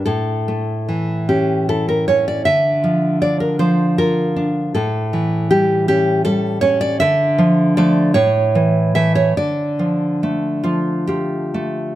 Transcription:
\new Staff \with { instrumentName = "Nylon-string guitar" } { \time 6/8 \key d \minor \tempo 4. = 52 << { a'4. g'8 a'16 bes'16 cis''16 d''16 | e''4 d''16 bes'16 c''8 bes'4 | a'4 g'8 g'8 a'8 cis''16 d''16 | e''4 d''8 cis''4 e''16 cis''16 |
d''4. f'8 g'4 | } \\ { a,8 a8 e8 cis'8 e'8 cis'8 | d8 f8 d'8 f8 f'8 d'8 | a,8 e8 g8 cis'8 g8 cis'8 | d8 f8 <f a>8 a,8 e8 <e a>8 |
d8 f8 a8 f8 f'8 a8 | } >> }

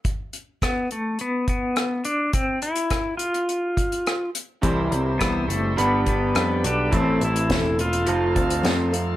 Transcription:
<<
  \new Staff \with { instrumentName = "Tonewheel organ" } { \time 4/4 \key c \major \tempo 4 = 104 r1 | r1 | <c' e' g'>2 <b d' g'>2 | <c' e' a'>2 <c' f' a'>2 | }
  \new Staff \with { instrumentName = "Steel-string acoustic guitar" } { \time 4/4 \key c \major r1 | r1 | <c e g c' e' c''>8 <g c' e' c''>8 <c e g c' e' c''>8 <g c' e' c''>8 <g d' g' b'>8 <d' g' b'>8 <g d' g' b'>8 <d' g' b'>8 | <a, e a c' e' a'>8 <a c' e' a'>8 <a, e a c' e' a'>8 <a c' e' a'>8 <a c' f' a'>8 <c' f' a'>8 <f a c' f' a'>8 <c' f' a'>8 | }
  \new Staff \with { instrumentName = "Clean electric guitar" } { \time 4/4 \key c \major r1 | r1 | <c e g c' e' c''>2 <g b d' b'>2 | <a, e a c' e' a'>2 <f a c' f' a'>2 | }
  \new Staff \with { instrumentName = "Pedal steel guitar" } { \time 4/4 \key c \major r4 b8 a8 b8 b4 d'8 | c'8 e'4 f'2 r8 | r4 b8 a8 b8 b4 d'8 | c'8 e'4 f'2 r8 | }
  \new Staff \with { instrumentName = "Picked electric bass" } { \clef bass \time 4/4 \key c \major r1 | r1 | c,8 c,8 c,8 fis,,8 g,,4 f,8 b,,8 | a,,8 a,,8 e,,4 f,,8 d,8 f,4 | }
  \new DrumStaff \with { instrumentName = "Drums" } \drummode { \time 4/4 <hh bd>8 hh8 <hh bd ss>8 hh8 hh8 <hh bd>8 <hh ss>8 hh8 | <hh bd>8 hh16 hh16 <hh bd ss>8 hh16 hh16 hh8 <hh bd>16 hh16 <hh ss>8 hh8 | <hh bd>8 hh8 <hh bd ss>8 hh8 hh8 <hh bd>8 <hh ss>8 hh8 | <hh bd>8 hh16 hh16 <hh bd sn>8 hh16 hh16 hh8 <hh bd>16 hh16 <hh sn>8 hh8 | }
>>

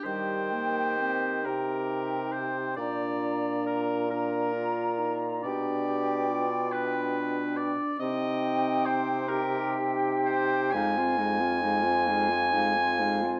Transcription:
<<
  \new Staff \with { instrumentName = "Flute" } { \time 6/8 \key ees \major \tempo 4. = 45 g''4. g''4. | bes''4. bes''4. | g''2~ g''8. r16 | g''4. g''4. |
f''16 aes''16 f''16 aes''16 f''16 aes''16 f''16 aes''16 f''16 aes''16 f''16 aes''16 | }
  \new Staff \with { instrumentName = "Oboe" } { \time 6/8 \key ees \major c''4. bes'4 c''8 | d''4 bes'8 bes'4 r8 | d''4. b'4 d''8 | ees''4 c''8 bes'8 r8 c''8 |
aes''2. | }
  \new Staff \with { instrumentName = "Clarinet" } { \time 6/8 \key ees \major g'2. | f'4. f'4. | g'8 g'8 f'4.~ f'16 r16 | ees'4. g'4. |
ees'16 f'16 ees'16 f'16 ees'16 f'16 ees'16 f'16 ees'16 f'16 ees'16 f'16 | }
  \new Staff \with { instrumentName = "French horn" } { \time 6/8 \key ees \major g8 bes8 c'8 ees'4. | d'4. d'8 f'8 ees'8 | d'4~ d'16 r16 d'4. | c'4. ees'4. |
aes16 c'16 aes16 c'16 aes16 c'16 aes16 c'16 aes16 c'16 aes16 c'16 | }
  \new Staff \with { instrumentName = "Bassoon" } { \clef bass \time 6/8 \key ees \major ees4. c4. | bes,2. | b,2~ b,8 r8 | c2. |
f,2. | }
>>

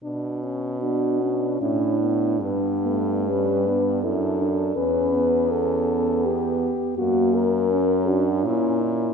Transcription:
<<
  \new Staff \with { instrumentName = "French horn" } { \time 3/4 \key b \minor \tempo 4 = 81 r4 fis'4 e'4 | d'4 b'4 a'4 | b'4 a'4 g'4 | fis'8 ais'4 fis'8 e'8 r8 | }
  \new Staff \with { instrumentName = "French horn" } { \time 3/4 \key b \minor r4 d'8 cis'8 d'4 | b8 a8 g8 b8 e'8 d'8 | cis'8 b2~ b8 | ais8 r8 cis'8 d'8 cis'4 | }
  \new Staff \with { instrumentName = "French horn" } { \time 3/4 \key b \minor d'8 cis'8 b8 d'8 cis'8 b8 | b4 cis'8 d'8 d'4 | cis'4 cis'4 b8 r8 | ais4 cis'4 cis'8 e'8 | }
  \new Staff \with { instrumentName = "French horn" } { \clef bass \time 3/4 \key b \minor b,2 a,4 | g,2 fis,4 | e,2~ e,8 r8 | fis,2 ais,4 | }
>>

